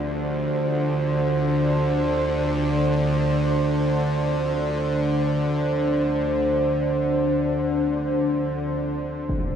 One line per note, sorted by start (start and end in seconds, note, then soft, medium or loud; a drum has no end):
0.00 9.29 D2 medium
0.00 9.29 D3 medium
0.00 9.56 D4 medium
0.00 9.30 F4 medium
0.00 9.31 G4 medium
0.00 9.56 C5 medium
9.29 9.56 D2 medium
9.29 9.56 D3 medium
9.29 impact medium